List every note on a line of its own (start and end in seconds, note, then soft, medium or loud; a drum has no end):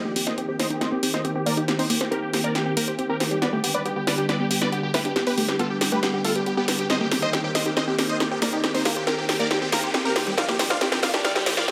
0.00 riser medium
0.05 0.15 A#3 medium
0.05 0.12 G4 medium
0.15 0.31 D#3 medium
0.15 0.31 A#3 medium
0.15 0.31 C4 medium
0.15 0.26 C4 medium
0.15 0.31 G4 medium
0.15 0.23 G4 medium
0.15 open hi-hat loud
0.27 0.34 C5 medium
0.27 0.33 C5 medium
0.27 0.34 D#5 loud
0.27 0.34 D#5 medium
0.27 snare soft
0.27 closed hi-hat medium
0.37 0.53 D#3 medium
0.37 0.53 A#3 medium
0.37 0.53 C4 medium
0.37 0.42 C4 medium
0.37 0.53 G4 medium
0.37 0.45 G4 medium
0.37 closed hi-hat medium
0.48 0.55 C4 medium
0.48 0.56 G4 medium
0.59 0.74 D#3 medium
0.59 0.74 A#3 medium
0.59 0.74 C4 loud
0.59 0.66 C4 medium
0.59 0.74 G4 loud
0.59 0.67 C5 medium
0.59 0.66 D#5 medium
0.59 0.67 D#5 medium
0.59 snare soft
0.59 open hi-hat loud
0.70 0.80 D#4 medium
0.70 0.77 G4 medium
0.70 0.78 G4 medium
0.70 closed hi-hat medium
0.81 0.96 D#3 medium
0.81 0.96 A#3 medium
0.81 0.96 C4 medium
0.81 0.85 C4 medium
0.81 0.96 G4 medium
0.81 0.88 C5 medium
0.81 0.88 D#5 medium
0.81 snare soft
0.81 closed hi-hat medium
0.92 0.98 C4 medium
0.92 0.99 G4 medium
1.02 1.18 D#3 medium
1.02 1.18 A#3 medium
1.02 1.18 C4 medium
1.02 1.13 C4 medium
1.02 1.18 G4 medium
1.02 1.10 G4 medium
1.02 open hi-hat loud
1.14 1.21 C5 medium
1.14 1.21 D#5 medium
1.14 snare soft
1.14 closed hi-hat medium
1.24 1.40 D#3 medium
1.24 1.40 A#3 medium
1.24 1.40 C4 medium
1.24 1.29 C4 medium
1.24 1.32 G4 medium
1.24 1.40 G4 medium
1.24 1.32 G4 medium
1.24 closed hi-hat medium
1.35 1.42 C4 medium
1.35 1.43 G4 medium
1.46 1.61 D#3 medium
1.46 1.62 A#3 medium
1.46 1.50 A#3 loud
1.46 1.62 C4 medium
1.46 1.62 G4 medium
1.46 1.54 A#4 medium
1.46 1.53 D5 medium
1.46 1.54 D5 medium
1.46 open hi-hat loud
1.57 1.64 D#4 loud
1.57 1.64 G4 medium
1.57 closed hi-hat medium
1.68 1.83 D#3 medium
1.68 1.83 A#3 medium
1.68 1.83 C4 medium
1.68 1.72 C4 medium
1.68 1.75 G4 medium
1.68 1.83 G4 medium
1.68 1.75 G4 medium
1.68 snare soft
1.68 closed hi-hat medium
1.79 1.85 C4 medium
1.79 1.86 D#4 medium
1.79 1.86 C5 medium
1.79 open hi-hat medium
1.89 2.05 D#3 medium
1.89 2.05 A#3 medium
1.89 1.99 A#3 loud
1.89 2.05 C4 medium
1.89 1.97 G4 medium
1.89 2.05 G4 medium
1.89 1.97 G4 medium
1.89 open hi-hat loud
2.00 2.08 G4 medium
2.00 2.10 C5 medium
2.00 snare soft
2.00 closed hi-hat medium
2.11 2.27 D#3 medium
2.11 2.27 A#3 medium
2.11 2.15 C4 medium
2.11 2.27 C4 medium
2.11 2.19 G4 medium
2.11 2.27 G4 medium
2.11 2.19 A#4 loud
2.11 2.19 A#4 medium
2.11 closed hi-hat medium
2.22 2.30 G4 medium
2.33 2.49 D#3 medium
2.33 2.49 A#3 loud
2.33 2.49 C4 loud
2.33 2.40 G4 medium
2.33 2.41 G4 medium
2.33 2.49 G4 medium
2.33 snare medium
2.33 open hi-hat loud
2.44 2.51 A#3 medium
2.44 2.51 A#4 medium
2.44 2.51 D5 medium
2.44 closed hi-hat medium
2.55 2.70 D#3 medium
2.55 2.70 A#3 medium
2.55 2.70 C4 medium
2.55 2.59 C4 medium
2.55 2.62 G4 medium
2.55 2.70 G4 medium
2.55 2.62 G4 medium
2.55 snare medium
2.55 closed hi-hat medium
2.66 2.76 C4 medium
2.66 2.73 G4 medium
2.77 2.92 D#3 medium
2.77 2.92 A#3 medium
2.77 2.86 A#3 loud
2.77 2.92 C4 medium
2.77 2.92 G4 medium
2.77 2.84 G4 medium
2.77 2.84 A#4 medium
2.77 open hi-hat loud
2.87 2.95 G4 medium
2.87 2.97 C5 medium
2.87 closed hi-hat medium
2.98 3.14 D#3 medium
2.98 3.14 A#3 medium
2.98 3.14 C4 medium
2.98 3.02 C4 medium
2.98 3.06 G4 medium
2.98 3.14 G4 medium
2.98 3.06 G4 medium
2.98 closed hi-hat medium
3.09 3.13 C4 medium
3.09 3.17 G4 medium
3.09 3.17 A#4 medium
3.09 3.17 A#4 loud
3.20 3.35 D#3 medium
3.20 3.35 A#3 medium
3.20 3.35 C4 medium
3.20 3.27 G4 medium
3.20 3.35 G4 medium
3.20 3.28 G4 medium
3.20 3.24 C5 medium
3.20 snare medium
3.20 open hi-hat loud
3.31 3.35 G3 medium
3.31 3.38 G4 medium
3.31 closed hi-hat medium
3.42 3.57 D3 medium
3.42 3.57 G3 medium
3.42 3.57 B3 medium
3.42 3.48 B3 medium
3.42 3.57 G4 medium
3.42 3.49 B4 medium
3.42 3.49 D5 loud
3.42 snare medium
3.42 closed hi-hat medium
3.53 3.62 A3 medium
3.53 3.60 G4 medium
3.63 3.79 D3 medium
3.63 3.79 G3 medium
3.63 3.79 B3 medium
3.63 3.73 B3 medium
3.63 3.79 G4 medium
3.63 3.71 G4 medium
3.63 open hi-hat loud
3.74 3.82 B4 medium
3.74 3.81 B4 medium
3.74 3.82 D5 medium
3.74 3.82 D5 loud
3.74 closed hi-hat medium
3.85 4.01 D3 medium
3.85 4.01 G3 medium
3.85 4.01 B3 medium
3.85 3.89 B3 medium
3.85 3.93 G4 medium
3.85 4.01 G4 medium
3.85 closed hi-hat medium
3.96 4.03 B3 medium
3.96 4.04 G4 medium
4.07 4.22 D3 loud
4.07 4.22 G3 medium
4.07 4.14 B3 medium
4.07 4.23 B3 loud
4.07 4.22 G4 medium
4.07 4.14 B4 medium
4.07 4.14 D5 medium
4.07 snare medium
4.07 open hi-hat loud
4.18 4.28 D4 medium
4.18 4.25 G4 medium
4.18 closed hi-hat medium
4.29 4.44 D3 medium
4.29 4.44 G3 medium
4.29 4.33 B3 medium
4.29 4.44 B3 loud
4.29 4.44 G4 medium
4.29 4.36 B4 medium
4.29 4.36 D5 medium
4.29 snare medium
4.29 closed hi-hat medium
4.40 4.46 B3 medium
4.40 4.47 G4 medium
4.50 4.66 D3 medium
4.50 4.66 G3 medium
4.50 4.60 B3 medium
4.50 4.66 B3 medium
4.50 4.58 G4 medium
4.50 4.66 G4 medium
4.50 open hi-hat loud
4.61 4.69 B4 medium
4.61 4.69 D5 medium
4.61 snare medium
4.61 closed hi-hat medium
4.72 4.88 D3 medium
4.72 4.88 G3 medium
4.72 4.76 B3 medium
4.72 4.88 B3 medium
4.72 4.80 G4 medium
4.72 4.88 G4 medium
4.72 closed hi-hat medium
4.83 4.90 B3 medium
4.83 4.91 G4 medium
4.94 5.09 D3 medium
4.94 5.09 G3 medium
4.94 4.98 A3 loud
4.94 5.09 B3 medium
4.94 5.01 G4 medium
4.94 5.09 G4 medium
4.94 5.01 B4 medium
4.94 5.02 B4 medium
4.94 snare medium
4.94 open hi-hat loud
5.05 5.11 D4 loud
5.05 5.12 G4 medium
5.05 closed hi-hat medium
5.16 5.31 D3 medium
5.16 5.31 G3 medium
5.16 5.20 B3 medium
5.16 5.31 B3 medium
5.16 5.23 G4 medium
5.16 5.31 G4 loud
5.16 snare medium
5.16 closed hi-hat medium
5.27 5.33 B3 medium
5.27 5.34 G4 medium
5.27 5.34 B4 medium
5.27 open hi-hat medium
5.38 5.53 D3 medium
5.38 5.53 G3 medium
5.38 5.47 A3 loud
5.38 5.53 B3 medium
5.38 5.45 G4 medium
5.38 5.53 G4 medium
5.38 open hi-hat loud
5.48 5.56 G4 medium
5.48 5.58 B4 medium
5.48 snare medium
5.48 closed hi-hat medium
5.59 5.75 D3 medium
5.59 5.75 G3 medium
5.59 5.63 B3 medium
5.59 5.75 B3 medium
5.59 5.67 F4 medium
5.59 5.75 G4 medium
5.59 5.67 A4 medium
5.59 closed hi-hat medium
5.70 5.78 G4 medium
5.81 5.97 D3 medium
5.81 5.96 G3 medium
5.81 5.97 B3 loud
5.81 5.88 G4 medium
5.81 5.97 G4 loud
5.81 snare medium
5.81 open hi-hat loud
5.92 5.98 A3 medium
5.92 5.99 G4 medium
5.92 5.99 B4 medium
5.92 closed hi-hat medium
6.03 6.18 D3 medium
6.03 6.18 G3 medium
6.03 6.07 B3 medium
6.03 6.18 B3 medium
6.03 6.10 G4 medium
6.03 6.18 G4 medium
6.03 snare medium
6.03 closed hi-hat medium
6.14 6.23 B3 medium
6.14 6.21 G4 medium
6.25 6.40 D3 medium
6.25 6.40 G3 medium
6.25 6.34 A3 loud
6.25 6.40 B3 medium
6.25 6.32 F4 medium
6.25 6.40 G4 medium
6.25 6.32 A4 medium
6.25 6.32 A4 loud
6.25 open hi-hat loud
6.35 6.43 G4 medium
6.35 6.45 B4 medium
6.35 closed hi-hat medium
6.46 6.62 D3 medium
6.46 6.62 G3 medium
6.46 6.50 B3 medium
6.46 6.62 B3 medium
6.46 6.54 G4 medium
6.46 6.62 G4 medium
6.46 closed hi-hat medium
6.57 6.61 B3 medium
6.57 6.65 B3 medium
6.57 6.65 G4 medium
6.57 6.65 G4 loud
6.68 6.84 D3 loud
6.68 6.84 G3 medium
6.68 6.84 B3 medium
6.68 6.75 G4 medium
6.68 6.84 G4 loud
6.68 6.72 B4 medium
6.68 snare medium
6.68 open hi-hat loud
6.79 6.83 G3 medium
6.79 6.86 G4 medium
6.79 closed hi-hat medium
6.90 7.05 D#3 medium
6.90 7.05 A#3 medium
6.90 6.96 C4 medium
6.90 7.05 C4 loud
6.90 7.05 G4 medium
6.90 6.97 C5 medium
6.90 6.97 D#5 loud
6.90 snare medium
6.90 closed hi-hat medium
7.00 7.10 A#3 medium
7.00 7.08 G4 medium
7.11 7.27 D#3 medium
7.11 7.27 A#3 medium
7.11 7.21 C4 medium
7.11 7.27 C4 medium
7.11 7.19 G4 medium
7.11 7.27 G4 loud
7.11 snare medium
7.11 open hi-hat loud
7.22 7.30 C5 medium
7.22 7.29 C5 medium
7.22 7.30 D#5 medium
7.22 7.30 D#5 loud
7.22 closed hi-hat medium
7.33 7.49 D#3 medium
7.33 7.49 A#3 medium
7.33 7.37 C4 medium
7.33 7.49 C4 medium
7.33 7.40 G4 medium
7.33 7.41 G4 medium
7.33 7.49 G4 medium
7.33 snare medium
7.33 closed hi-hat medium
7.44 7.51 C4 medium
7.44 7.51 G4 medium
7.44 7.52 G4 medium
7.55 7.70 D#3 medium
7.55 7.70 A#3 medium
7.55 7.61 C4 medium
7.55 7.70 C4 loud
7.55 7.70 G4 medium
7.55 7.62 C5 medium
7.55 7.62 D#5 medium
7.55 snare medium
7.55 open hi-hat loud
7.66 7.75 D#4 medium
7.66 7.73 G4 medium
7.66 closed hi-hat medium
7.77 7.92 D#3 medium
7.77 7.92 A#3 medium
7.77 7.81 C4 medium
7.77 7.92 C4 medium
7.77 7.92 G4 medium
7.77 7.84 C5 medium
7.77 7.84 D#5 medium
7.77 snare medium
7.77 closed hi-hat medium
7.87 7.94 C4 medium
7.87 7.95 G4 medium
7.98 8.14 D#3 medium
7.98 8.14 A#3 medium
7.98 8.08 C4 medium
7.98 8.14 C4 medium
7.98 8.06 G4 medium
7.98 8.14 G4 medium
7.98 snare medium
7.98 open hi-hat loud
8.09 8.17 C5 medium
8.09 8.17 D#5 medium
8.09 closed hi-hat medium
8.20 8.36 D#3 medium
8.20 8.36 A#3 medium
8.20 8.24 C4 medium
8.20 8.36 C4 medium
8.20 8.28 G4 medium
8.20 8.35 G4 medium
8.20 8.28 G4 medium
8.20 snare medium
8.20 closed hi-hat medium
8.31 8.38 C4 medium
8.31 8.38 G4 medium
8.31 8.39 G4 medium
8.42 8.57 D#3 medium
8.42 8.46 A#3 loud
8.42 8.57 A#3 medium
8.42 8.57 C4 medium
8.42 8.57 G4 medium
8.42 8.49 A#4 medium
8.42 8.49 D5 medium
8.42 snare medium
8.42 open hi-hat loud
8.53 8.59 D#4 loud
8.53 8.60 G4 medium
8.53 closed hi-hat medium
8.64 8.79 D#3 medium
8.64 8.79 A#3 medium
8.64 8.68 C4 medium
8.64 8.79 C4 medium
8.64 8.71 G4 medium
8.64 8.79 G4 medium
8.64 snare medium
8.64 closed hi-hat medium
8.74 8.81 C4 medium
8.74 8.82 D#4 medium
8.74 8.82 C5 loud
8.74 8.82 C5 medium
8.74 open hi-hat medium
8.85 9.01 D#3 medium
8.85 8.95 A#3 loud
8.85 9.01 A#3 medium
8.85 9.01 C4 medium
8.85 8.93 G4 medium
8.85 9.01 G4 medium
8.85 8.93 G4 medium
8.85 snare medium
8.85 open hi-hat loud
8.96 9.04 G4 medium
8.96 9.06 C5 medium
8.96 closed hi-hat medium
9.07 9.22 D#3 medium
9.07 9.22 A#3 medium
9.07 9.22 C4 medium
9.07 9.11 C4 medium
9.07 9.22 G4 medium
9.07 9.15 G4 medium
9.07 9.14 A#4 loud
9.07 9.15 A#4 medium
9.07 snare medium
9.07 closed hi-hat medium
9.18 9.25 G4 medium
9.18 9.26 G4 medium
9.29 9.44 D#3 loud
9.29 9.44 A#3 loud
9.29 9.44 C4 loud
9.29 9.36 G4 medium
9.29 9.44 G4 loud
9.29 9.36 G4 medium
9.29 snare medium
9.29 open hi-hat loud
9.39 9.46 A#3 medium
9.39 9.47 A#4 medium
9.39 9.47 D5 medium
9.39 closed hi-hat medium
9.51 9.66 D#3 loud
9.51 9.66 A#3 medium
9.51 9.55 C4 medium
9.51 9.66 C4 medium
9.51 9.58 G4 medium
9.51 9.66 G4 medium
9.51 9.58 G4 medium
9.51 snare medium
9.51 closed hi-hat medium
9.61 9.71 C4 medium
9.61 9.69 G4 medium
9.72 9.88 D#3 medium
9.72 9.82 A#3 loud
9.72 9.88 A#3 medium
9.72 9.88 C4 medium
9.72 9.88 G4 medium
9.72 9.80 G4 medium
9.72 9.80 A#4 medium
9.72 9.80 A#4 loud
9.72 snare medium
9.72 open hi-hat loud
9.83 9.91 G4 medium
9.83 9.93 C5 medium
9.83 closed hi-hat medium
9.94 10.10 D#3 medium
9.94 10.10 A#3 medium
9.94 10.10 C4 medium
9.94 9.98 C4 medium
9.94 10.01 G4 medium
9.94 10.10 G4 medium
9.94 10.02 G4 medium
9.94 snare medium
9.94 closed hi-hat medium
10.05 10.09 C4 medium
10.05 10.12 G4 medium
10.05 10.12 A#4 medium
10.05 10.12 A#4 loud
10.16 10.31 D#3 medium
10.16 10.31 A#3 medium
10.16 10.31 C4 loud
10.16 10.23 G4 medium
10.16 10.31 G4 medium
10.16 10.23 G4 medium
10.16 10.20 C5 medium
10.16 snare medium
10.16 open hi-hat loud
10.27 10.31 G3 medium
10.27 10.34 G4 medium
10.27 closed hi-hat medium
10.38 10.53 F3 medium
10.38 10.53 A#3 medium
10.38 10.44 C4 medium
10.38 10.53 D4 medium
10.38 10.53 G4 loud
10.38 10.45 D5 medium
10.38 10.45 F5 loud
10.38 snare medium
10.38 closed hi-hat medium
10.48 10.58 A#3 medium
10.48 10.56 G4 medium
10.48 snare medium
10.59 10.75 F3 medium
10.59 10.75 A#3 medium
10.59 10.69 C4 medium
10.59 10.75 D4 medium
10.59 10.67 G4 medium
10.59 10.75 G4 medium
10.59 snare loud
10.59 open hi-hat loud
10.70 10.77 C5 medium
10.70 10.78 D5 medium
10.70 10.77 F5 loud
10.70 10.78 F5 medium
10.70 snare medium
10.70 closed hi-hat medium
10.81 10.96 F3 medium
10.81 10.96 A#3 medium
10.81 10.85 C4 medium
10.81 10.96 D4 medium
10.81 10.88 G4 medium
10.81 10.96 G4 medium
10.81 10.88 G4 medium
10.81 snare loud
10.81 closed hi-hat medium
10.92 10.99 C4 medium
10.92 10.99 G4 medium
10.92 snare medium
11.03 11.18 F3 loud
11.03 11.18 A#3 loud
11.03 11.09 C4 medium
11.03 11.18 D4 medium
11.03 11.18 G4 loud
11.03 11.10 D5 medium
11.03 11.10 F5 medium
11.03 11.10 F5 loud
11.03 snare medium
11.03 open hi-hat loud
11.14 11.23 D4 medium
11.14 11.21 G4 medium
11.14 snare medium
11.14 closed hi-hat medium
11.24 11.40 F3 medium
11.24 11.40 A#3 loud
11.24 11.29 C4 medium
11.24 11.40 D4 medium
11.24 11.40 G4 medium
11.24 11.32 D5 medium
11.24 11.32 F5 loud
11.24 snare medium
11.24 closed hi-hat medium
11.35 11.42 C4 medium
11.35 11.43 G4 medium
11.35 snare medium
11.46 11.62 F3 medium
11.46 11.62 A#3 medium
11.46 11.56 C4 medium
11.46 11.62 D4 medium
11.46 11.54 G4 medium
11.46 11.62 G4 medium
11.46 11.54 G4 medium
11.46 snare loud
11.46 open hi-hat loud
11.57 11.65 D5 medium
11.57 11.65 F5 medium
11.57 11.65 F5 loud
11.57 snare medium
11.57 closed hi-hat medium
11.68 11.71 C4 medium
11.68 11.71 D4 medium
11.68 11.71 G4 medium
11.68 snare loud
11.68 closed hi-hat medium